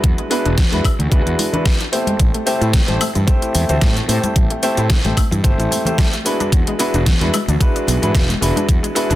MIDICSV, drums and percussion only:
0, 0, Header, 1, 2, 480
1, 0, Start_track
1, 0, Tempo, 540541
1, 34, Time_signature, 4, 2, 24, 8
1, 8129, End_track
2, 0, Start_track
2, 0, Title_t, "Drums"
2, 33, Note_on_c, 9, 36, 117
2, 34, Note_on_c, 9, 42, 84
2, 121, Note_off_c, 9, 36, 0
2, 123, Note_off_c, 9, 42, 0
2, 162, Note_on_c, 9, 42, 35
2, 251, Note_off_c, 9, 42, 0
2, 274, Note_on_c, 9, 46, 102
2, 362, Note_off_c, 9, 46, 0
2, 404, Note_on_c, 9, 42, 36
2, 493, Note_off_c, 9, 42, 0
2, 512, Note_on_c, 9, 36, 120
2, 512, Note_on_c, 9, 38, 112
2, 514, Note_on_c, 9, 42, 86
2, 517, Note_on_c, 9, 64, 80
2, 601, Note_off_c, 9, 36, 0
2, 601, Note_off_c, 9, 38, 0
2, 603, Note_off_c, 9, 42, 0
2, 606, Note_off_c, 9, 64, 0
2, 641, Note_on_c, 9, 63, 93
2, 645, Note_on_c, 9, 42, 34
2, 730, Note_off_c, 9, 63, 0
2, 734, Note_off_c, 9, 42, 0
2, 751, Note_on_c, 9, 36, 60
2, 756, Note_on_c, 9, 46, 105
2, 756, Note_on_c, 9, 76, 63
2, 840, Note_off_c, 9, 36, 0
2, 845, Note_off_c, 9, 46, 0
2, 845, Note_off_c, 9, 76, 0
2, 886, Note_on_c, 9, 42, 35
2, 887, Note_on_c, 9, 64, 67
2, 975, Note_off_c, 9, 42, 0
2, 976, Note_off_c, 9, 64, 0
2, 991, Note_on_c, 9, 36, 117
2, 996, Note_on_c, 9, 42, 80
2, 1080, Note_off_c, 9, 36, 0
2, 1084, Note_off_c, 9, 42, 0
2, 1126, Note_on_c, 9, 42, 36
2, 1215, Note_off_c, 9, 42, 0
2, 1233, Note_on_c, 9, 63, 62
2, 1234, Note_on_c, 9, 46, 112
2, 1321, Note_off_c, 9, 63, 0
2, 1323, Note_off_c, 9, 46, 0
2, 1359, Note_on_c, 9, 64, 78
2, 1364, Note_on_c, 9, 42, 36
2, 1448, Note_off_c, 9, 64, 0
2, 1453, Note_off_c, 9, 42, 0
2, 1470, Note_on_c, 9, 36, 121
2, 1471, Note_on_c, 9, 38, 114
2, 1473, Note_on_c, 9, 46, 62
2, 1559, Note_off_c, 9, 36, 0
2, 1560, Note_off_c, 9, 38, 0
2, 1562, Note_off_c, 9, 46, 0
2, 1603, Note_on_c, 9, 42, 34
2, 1692, Note_off_c, 9, 42, 0
2, 1712, Note_on_c, 9, 46, 99
2, 1801, Note_off_c, 9, 46, 0
2, 1836, Note_on_c, 9, 63, 97
2, 1841, Note_on_c, 9, 42, 37
2, 1925, Note_off_c, 9, 63, 0
2, 1930, Note_off_c, 9, 42, 0
2, 1949, Note_on_c, 9, 36, 111
2, 1951, Note_on_c, 9, 42, 84
2, 1953, Note_on_c, 9, 69, 43
2, 2038, Note_off_c, 9, 36, 0
2, 2040, Note_off_c, 9, 42, 0
2, 2042, Note_off_c, 9, 69, 0
2, 2082, Note_on_c, 9, 42, 37
2, 2170, Note_off_c, 9, 42, 0
2, 2191, Note_on_c, 9, 46, 95
2, 2193, Note_on_c, 9, 69, 71
2, 2279, Note_off_c, 9, 46, 0
2, 2282, Note_off_c, 9, 69, 0
2, 2323, Note_on_c, 9, 42, 36
2, 2325, Note_on_c, 9, 69, 32
2, 2411, Note_off_c, 9, 42, 0
2, 2414, Note_off_c, 9, 69, 0
2, 2428, Note_on_c, 9, 38, 110
2, 2429, Note_on_c, 9, 36, 113
2, 2430, Note_on_c, 9, 42, 84
2, 2432, Note_on_c, 9, 69, 43
2, 2437, Note_on_c, 9, 64, 84
2, 2517, Note_off_c, 9, 38, 0
2, 2518, Note_off_c, 9, 36, 0
2, 2519, Note_off_c, 9, 42, 0
2, 2521, Note_off_c, 9, 69, 0
2, 2525, Note_off_c, 9, 64, 0
2, 2559, Note_on_c, 9, 42, 35
2, 2559, Note_on_c, 9, 63, 90
2, 2648, Note_off_c, 9, 42, 0
2, 2648, Note_off_c, 9, 63, 0
2, 2671, Note_on_c, 9, 46, 102
2, 2671, Note_on_c, 9, 76, 67
2, 2673, Note_on_c, 9, 69, 77
2, 2760, Note_off_c, 9, 46, 0
2, 2760, Note_off_c, 9, 76, 0
2, 2762, Note_off_c, 9, 69, 0
2, 2799, Note_on_c, 9, 64, 74
2, 2800, Note_on_c, 9, 42, 35
2, 2802, Note_on_c, 9, 69, 31
2, 2888, Note_off_c, 9, 64, 0
2, 2889, Note_off_c, 9, 42, 0
2, 2891, Note_off_c, 9, 69, 0
2, 2909, Note_on_c, 9, 36, 114
2, 2912, Note_on_c, 9, 42, 85
2, 2914, Note_on_c, 9, 69, 43
2, 2998, Note_off_c, 9, 36, 0
2, 3000, Note_off_c, 9, 42, 0
2, 3003, Note_off_c, 9, 69, 0
2, 3040, Note_on_c, 9, 42, 38
2, 3042, Note_on_c, 9, 69, 31
2, 3129, Note_off_c, 9, 42, 0
2, 3131, Note_off_c, 9, 69, 0
2, 3149, Note_on_c, 9, 46, 107
2, 3151, Note_on_c, 9, 69, 77
2, 3154, Note_on_c, 9, 63, 57
2, 3238, Note_off_c, 9, 46, 0
2, 3240, Note_off_c, 9, 69, 0
2, 3243, Note_off_c, 9, 63, 0
2, 3276, Note_on_c, 9, 64, 71
2, 3278, Note_on_c, 9, 42, 38
2, 3280, Note_on_c, 9, 69, 33
2, 3365, Note_off_c, 9, 64, 0
2, 3367, Note_off_c, 9, 42, 0
2, 3369, Note_off_c, 9, 69, 0
2, 3387, Note_on_c, 9, 38, 107
2, 3389, Note_on_c, 9, 36, 113
2, 3389, Note_on_c, 9, 42, 82
2, 3391, Note_on_c, 9, 69, 43
2, 3476, Note_off_c, 9, 38, 0
2, 3478, Note_off_c, 9, 36, 0
2, 3478, Note_off_c, 9, 42, 0
2, 3480, Note_off_c, 9, 69, 0
2, 3522, Note_on_c, 9, 42, 37
2, 3524, Note_on_c, 9, 69, 30
2, 3611, Note_off_c, 9, 42, 0
2, 3613, Note_off_c, 9, 69, 0
2, 3632, Note_on_c, 9, 46, 102
2, 3634, Note_on_c, 9, 69, 74
2, 3721, Note_off_c, 9, 46, 0
2, 3723, Note_off_c, 9, 69, 0
2, 3759, Note_on_c, 9, 63, 87
2, 3761, Note_on_c, 9, 42, 36
2, 3764, Note_on_c, 9, 69, 33
2, 3848, Note_off_c, 9, 63, 0
2, 3850, Note_off_c, 9, 42, 0
2, 3852, Note_off_c, 9, 69, 0
2, 3870, Note_on_c, 9, 36, 110
2, 3872, Note_on_c, 9, 42, 91
2, 3874, Note_on_c, 9, 69, 44
2, 3959, Note_off_c, 9, 36, 0
2, 3961, Note_off_c, 9, 42, 0
2, 3963, Note_off_c, 9, 69, 0
2, 4000, Note_on_c, 9, 42, 37
2, 4089, Note_off_c, 9, 42, 0
2, 4109, Note_on_c, 9, 46, 99
2, 4112, Note_on_c, 9, 69, 79
2, 4198, Note_off_c, 9, 46, 0
2, 4200, Note_off_c, 9, 69, 0
2, 4239, Note_on_c, 9, 42, 39
2, 4241, Note_on_c, 9, 69, 34
2, 4328, Note_off_c, 9, 42, 0
2, 4330, Note_off_c, 9, 69, 0
2, 4348, Note_on_c, 9, 38, 107
2, 4350, Note_on_c, 9, 36, 113
2, 4350, Note_on_c, 9, 42, 86
2, 4351, Note_on_c, 9, 64, 83
2, 4353, Note_on_c, 9, 69, 44
2, 4437, Note_off_c, 9, 38, 0
2, 4439, Note_off_c, 9, 36, 0
2, 4439, Note_off_c, 9, 42, 0
2, 4440, Note_off_c, 9, 64, 0
2, 4441, Note_off_c, 9, 69, 0
2, 4476, Note_on_c, 9, 63, 83
2, 4481, Note_on_c, 9, 42, 38
2, 4565, Note_off_c, 9, 63, 0
2, 4570, Note_off_c, 9, 42, 0
2, 4591, Note_on_c, 9, 36, 57
2, 4594, Note_on_c, 9, 46, 101
2, 4594, Note_on_c, 9, 76, 66
2, 4596, Note_on_c, 9, 69, 81
2, 4680, Note_off_c, 9, 36, 0
2, 4683, Note_off_c, 9, 46, 0
2, 4683, Note_off_c, 9, 76, 0
2, 4685, Note_off_c, 9, 69, 0
2, 4718, Note_on_c, 9, 64, 76
2, 4727, Note_on_c, 9, 42, 36
2, 4730, Note_on_c, 9, 69, 31
2, 4807, Note_off_c, 9, 64, 0
2, 4816, Note_off_c, 9, 42, 0
2, 4818, Note_off_c, 9, 69, 0
2, 4832, Note_on_c, 9, 36, 112
2, 4836, Note_on_c, 9, 42, 89
2, 4839, Note_on_c, 9, 69, 44
2, 4920, Note_off_c, 9, 36, 0
2, 4925, Note_off_c, 9, 42, 0
2, 4927, Note_off_c, 9, 69, 0
2, 4969, Note_on_c, 9, 42, 37
2, 4971, Note_on_c, 9, 69, 31
2, 5058, Note_off_c, 9, 42, 0
2, 5060, Note_off_c, 9, 69, 0
2, 5067, Note_on_c, 9, 63, 57
2, 5080, Note_on_c, 9, 46, 98
2, 5082, Note_on_c, 9, 69, 82
2, 5155, Note_off_c, 9, 63, 0
2, 5169, Note_off_c, 9, 46, 0
2, 5171, Note_off_c, 9, 69, 0
2, 5195, Note_on_c, 9, 64, 80
2, 5209, Note_on_c, 9, 42, 37
2, 5211, Note_on_c, 9, 69, 34
2, 5284, Note_off_c, 9, 64, 0
2, 5298, Note_off_c, 9, 42, 0
2, 5300, Note_off_c, 9, 69, 0
2, 5312, Note_on_c, 9, 36, 112
2, 5316, Note_on_c, 9, 38, 110
2, 5318, Note_on_c, 9, 46, 58
2, 5321, Note_on_c, 9, 69, 44
2, 5401, Note_off_c, 9, 36, 0
2, 5405, Note_off_c, 9, 38, 0
2, 5407, Note_off_c, 9, 46, 0
2, 5409, Note_off_c, 9, 69, 0
2, 5447, Note_on_c, 9, 42, 36
2, 5449, Note_on_c, 9, 69, 31
2, 5535, Note_off_c, 9, 42, 0
2, 5538, Note_off_c, 9, 69, 0
2, 5556, Note_on_c, 9, 46, 95
2, 5559, Note_on_c, 9, 69, 76
2, 5645, Note_off_c, 9, 46, 0
2, 5647, Note_off_c, 9, 69, 0
2, 5686, Note_on_c, 9, 42, 37
2, 5687, Note_on_c, 9, 63, 76
2, 5688, Note_on_c, 9, 69, 35
2, 5775, Note_off_c, 9, 42, 0
2, 5776, Note_off_c, 9, 63, 0
2, 5777, Note_off_c, 9, 69, 0
2, 5793, Note_on_c, 9, 36, 107
2, 5797, Note_on_c, 9, 42, 93
2, 5799, Note_on_c, 9, 69, 46
2, 5881, Note_off_c, 9, 36, 0
2, 5885, Note_off_c, 9, 42, 0
2, 5888, Note_off_c, 9, 69, 0
2, 5924, Note_on_c, 9, 42, 40
2, 6013, Note_off_c, 9, 42, 0
2, 6034, Note_on_c, 9, 46, 94
2, 6036, Note_on_c, 9, 69, 80
2, 6122, Note_off_c, 9, 46, 0
2, 6125, Note_off_c, 9, 69, 0
2, 6163, Note_on_c, 9, 42, 39
2, 6166, Note_on_c, 9, 69, 35
2, 6252, Note_off_c, 9, 42, 0
2, 6254, Note_off_c, 9, 69, 0
2, 6273, Note_on_c, 9, 36, 106
2, 6273, Note_on_c, 9, 38, 109
2, 6274, Note_on_c, 9, 64, 92
2, 6275, Note_on_c, 9, 42, 88
2, 6277, Note_on_c, 9, 69, 46
2, 6362, Note_off_c, 9, 36, 0
2, 6362, Note_off_c, 9, 38, 0
2, 6362, Note_off_c, 9, 64, 0
2, 6364, Note_off_c, 9, 42, 0
2, 6366, Note_off_c, 9, 69, 0
2, 6403, Note_on_c, 9, 63, 84
2, 6405, Note_on_c, 9, 42, 40
2, 6492, Note_off_c, 9, 63, 0
2, 6494, Note_off_c, 9, 42, 0
2, 6515, Note_on_c, 9, 46, 99
2, 6515, Note_on_c, 9, 76, 66
2, 6517, Note_on_c, 9, 69, 84
2, 6604, Note_off_c, 9, 46, 0
2, 6604, Note_off_c, 9, 76, 0
2, 6606, Note_off_c, 9, 69, 0
2, 6646, Note_on_c, 9, 64, 71
2, 6647, Note_on_c, 9, 42, 38
2, 6649, Note_on_c, 9, 69, 34
2, 6734, Note_off_c, 9, 64, 0
2, 6736, Note_off_c, 9, 42, 0
2, 6738, Note_off_c, 9, 69, 0
2, 6754, Note_on_c, 9, 36, 113
2, 6757, Note_on_c, 9, 42, 95
2, 6759, Note_on_c, 9, 69, 46
2, 6843, Note_off_c, 9, 36, 0
2, 6846, Note_off_c, 9, 42, 0
2, 6848, Note_off_c, 9, 69, 0
2, 6890, Note_on_c, 9, 42, 40
2, 6892, Note_on_c, 9, 69, 31
2, 6978, Note_off_c, 9, 42, 0
2, 6981, Note_off_c, 9, 69, 0
2, 6991, Note_on_c, 9, 63, 66
2, 7000, Note_on_c, 9, 46, 99
2, 7002, Note_on_c, 9, 69, 84
2, 7080, Note_off_c, 9, 63, 0
2, 7089, Note_off_c, 9, 46, 0
2, 7091, Note_off_c, 9, 69, 0
2, 7125, Note_on_c, 9, 64, 78
2, 7130, Note_on_c, 9, 42, 39
2, 7132, Note_on_c, 9, 69, 34
2, 7213, Note_off_c, 9, 64, 0
2, 7218, Note_off_c, 9, 42, 0
2, 7221, Note_off_c, 9, 69, 0
2, 7234, Note_on_c, 9, 36, 113
2, 7238, Note_on_c, 9, 38, 114
2, 7240, Note_on_c, 9, 42, 90
2, 7243, Note_on_c, 9, 69, 46
2, 7323, Note_off_c, 9, 36, 0
2, 7327, Note_off_c, 9, 38, 0
2, 7329, Note_off_c, 9, 42, 0
2, 7331, Note_off_c, 9, 69, 0
2, 7371, Note_on_c, 9, 42, 40
2, 7373, Note_on_c, 9, 69, 31
2, 7460, Note_off_c, 9, 42, 0
2, 7462, Note_off_c, 9, 69, 0
2, 7481, Note_on_c, 9, 46, 95
2, 7483, Note_on_c, 9, 69, 77
2, 7570, Note_off_c, 9, 46, 0
2, 7572, Note_off_c, 9, 69, 0
2, 7603, Note_on_c, 9, 63, 84
2, 7611, Note_on_c, 9, 42, 39
2, 7613, Note_on_c, 9, 69, 35
2, 7692, Note_off_c, 9, 63, 0
2, 7700, Note_off_c, 9, 42, 0
2, 7702, Note_off_c, 9, 69, 0
2, 7713, Note_on_c, 9, 36, 110
2, 7718, Note_on_c, 9, 42, 94
2, 7720, Note_on_c, 9, 69, 44
2, 7802, Note_off_c, 9, 36, 0
2, 7806, Note_off_c, 9, 42, 0
2, 7809, Note_off_c, 9, 69, 0
2, 7850, Note_on_c, 9, 42, 41
2, 7852, Note_on_c, 9, 69, 30
2, 7939, Note_off_c, 9, 42, 0
2, 7941, Note_off_c, 9, 69, 0
2, 7956, Note_on_c, 9, 46, 99
2, 7959, Note_on_c, 9, 69, 81
2, 8045, Note_off_c, 9, 46, 0
2, 8047, Note_off_c, 9, 69, 0
2, 8086, Note_on_c, 9, 42, 40
2, 8089, Note_on_c, 9, 69, 33
2, 8129, Note_off_c, 9, 42, 0
2, 8129, Note_off_c, 9, 69, 0
2, 8129, End_track
0, 0, End_of_file